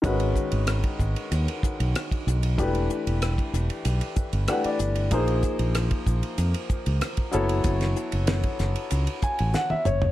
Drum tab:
RD |xx-xxx-xxx-xxx-x|xx-xxx-xxx-xxx-x|xx-xxx-xxx-xxx-x|xx-xxx-xxx-x----|
HH |p-p-p-p-p-p-p-p-|p-p-p-p-p-p-p-p-|p-p-p-p-p-p-p-p-|p-p-p-p-p-p-p-p-|
SD |----r-------r---|----r-------r---|----r-------r---|-o--o-o-----o---|
T1 |----------------|----------------|----------------|-------------o--|
T2 |----------------|----------------|----------------|--------------o-|
FT |----------------|----------------|----------------|---------------o|
BD |o-o--oo---o--o--|o----o----o-----|o-o--oo---o--o--|o----o----o-----|